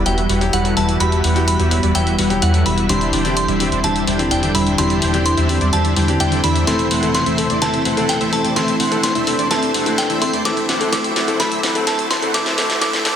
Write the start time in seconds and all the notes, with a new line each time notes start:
Already playing: E3 G3 B3 E5
0.05 E1 F#3 G3 B3 E4 F#4 G4 B4 E5 G5, closed hi-hat
0.18 closed hi-hat
0.29 E1 G3 E4 F#4 B4 F#5, open hi-hat
0.41 F#3 B3 E4 G4, closed hi-hat
0.53 E1 G3 E4 F#4 B4 F#5, closed hi-hat
0.64 F#3 B3 E4 A4, closed hi-hat
0.77 E1 G3 E4 F#4 B4 E5 A5, open hi-hat
0.89 closed hi-hat
1.00 E1 G3 B3 E4 F#4 G4 B4 E5 B5, closed hi-hat
1.12 closed hi-hat
1.24 E1 G3 E4 F#4 B4 F#5, open hi-hat
1.35 B3 E4 F#4 G4, closed hi-hat
1.48 B5, closed hi-hat
1.59 E1 G3 E4 F#4 B4 E5, closed hi-hat
1.71 F#3 B3 E4 G4, open hi-hat
1.83 E1 G3 E4 F#4 B4 D5, closed hi-hat
1.94 E1 F#3 G3 B3 E4 F#4 G4 B4 E5 G5, closed hi-hat
2.07 closed hi-hat
2.19 E1 G3 E4 F#4 B4 F#5, open hi-hat
2.30 F#3 B3 E4 G4, closed hi-hat
2.42 E2 G3 E4 F#4 B4 F#5, closed hi-hat
2.53 F#3 B3 E4 A4, closed hi-hat
2.66 E1 G3 E4 F#4 B4 E5 B5, open hi-hat
2.78 closed hi-hat
2.89 E1 D3 E3 G3 C4 D4 E4 G4 C5 E5 C6, closed hi-hat
3.01 closed hi-hat
3.13 E1 G3 D4 E4 C5 G5, open hi-hat
3.24 E3 C4 D4 G4, closed hi-hat
3.37 C6, closed hi-hat
3.48 E1 G3 D4 E4 C5 E5, closed hi-hat
3.60 E3 C4 D4 G4, open hi-hat
3.72 E1 G3 D4 E4 C5 D5, closed hi-hat
3.83 E1 E3 G3 C4 D4 E4 G4 C5 E5 A5, closed hi-hat
3.96 closed hi-hat
4.07 E1 G3 D4 E4 C5 G5, open hi-hat
4.19 E3 C4 D4 G4, closed hi-hat
4.31 E1 G3 D4 E4 C5 G5, closed hi-hat
4.42 E3 C4 D4 A4, closed hi-hat
4.55 E1 G3 D4 E4 C5 E5 B5, open hi-hat
4.67 closed hi-hat
4.78 E1 E3 G3 C4 D4 E4 G4 C5 E5 C6, closed hi-hat
4.90 closed hi-hat
5.02 E1 G3 D4 E4 C5 G5, open hi-hat
5.13 E3 C4 D4 G4, closed hi-hat
5.26 C6, closed hi-hat
5.37 E1 G3 D4 E4 C5 E5, closed hi-hat
5.49 E3 C4 D4 G4, open hi-hat
5.61 E1 G3 D4 E4 C5 D5, closed hi-hat
5.72 E1 E3 G3 C4 D4 E4 G4 C5 E5 A5, closed hi-hat
5.85 closed hi-hat
5.96 E1 G3 D4 E4 C5 G5, open hi-hat
6.08 E3 C4 D4 G4, closed hi-hat
6.20 E1 G3 D4 E4 C5 G5, closed hi-hat
6.31 E3 C4 D4 A4, closed hi-hat
6.44 E2 G3 D4 E4 C5 E5 B5, open hi-hat
6.56 closed hi-hat
6.67 E1 C3 E3 A3 C4 E4 A4 C5 E5 C6, snare, closed hi-hat, riser
6.79 closed hi-hat
6.91 E1 A3 C4 E4 C5 F#5, open hi-hat
7.02 E3 A3 C4 A4, closed hi-hat
7.15 C6, snare, closed hi-hat
7.26 E1 A3 C4 E4 C5 E5, closed hi-hat
7.38 E3 A3 C4 A4, open hi-hat
7.50 E1 A3 C4 E4 C5 D5, closed hi-hat
7.61 E1 E3 A3 C4 E4 A4 C5 E5 A5, snare, closed hi-hat
7.74 closed hi-hat
7.85 E1 A3 C4 E4 C5 F#5, open hi-hat
7.97 E3 A3 C4 A4, closed hi-hat
8.09 G5, snare, closed hi-hat
8.21 E1 A3 C4 E4 C5 E5, closed hi-hat
8.32 E3 A3 C4 A4 A5, open hi-hat
8.44 E1 A3 C4 E4 C5 D5, closed hi-hat
8.56 E1 E3 A3 C4 D4 E4 A4 C5 E5 C6, snare, closed hi-hat
8.68 closed hi-hat
8.80 E1 A3 C4 E4 C5 F#5, open hi-hat
8.91 E3 A3 C4 A4, closed hi-hat
9.03 C6, snare, closed hi-hat
9.15 E1 A3 C4 E4 C5 E5, closed hi-hat
9.27 E3 A3 C4 A4, open hi-hat
9.39 E1 A3 C4 E4 C5 D5, closed hi-hat
9.50 E1 E3 A3 C4 E4 A4 C5 E5 A5, snare, closed hi-hat
9.63 closed hi-hat
9.74 E1 A3 C4 E4 C5 F#5, open hi-hat
9.86 E3 A3 C4 A4, closed hi-hat
9.98 G5, snare, closed hi-hat
10.10 E1 A3 C4 E4 C5 E5, closed hi-hat
10.21 E3 A3 C4 A4 C6, open hi-hat
10.33 E2 A3 C4 E4 C5 D5, closed hi-hat
10.45 E1 D3 E3 F#3 A3 C4 E4 A4 C5 E5 D6, snare, closed hi-hat
10.57 closed hi-hat
10.69 E1 A3 C4 E4 C5 F#5, snare, open hi-hat
10.80 E3 A3 C4 A4, closed hi-hat
10.92 E1 E3 A3 C4 E4 A4 C5 E5 D6, snare, closed hi-hat
11.04 closed hi-hat
11.16 E1 A3 C4 E4 C5 F#5, snare, open hi-hat
11.27 E3 A3 C4 A4, closed hi-hat
11.39 E1 E3 A3 C4 E4 A4 C5 E5 B5, snare, closed hi-hat
11.52 closed hi-hat
11.63 E1 A3 C4 E4 C5 F#5, snare, open hi-hat
11.75 E3 A3 C4 A4, closed hi-hat
11.86 E1 E3 A3 C4 E4 A4 C5 E5 A5, snare, closed hi-hat
11.99 closed hi-hat
12.11 E1 A3 C4 E4 C5 F#5 C6, snare, open hi-hat
12.22 E3 A3 C4 A4, closed hi-hat
12.34 E1 E3 A3 C4 E4 A4 C5 E5 D6, snare, closed hi-hat
12.46 snare, closed hi-hat
12.57 E1 E3 A3 C4 E4 A4 C5 E5, snare, open hi-hat
12.70 snare, closed hi-hat
12.81 E1 E3 A3 C4 E4 A4 C5 E5 D6, snare, closed hi-hat
12.93 snare, closed hi-hat
13.05 E1 E3 A3 C4 E4 A4 C5 E5, snare, open hi-hat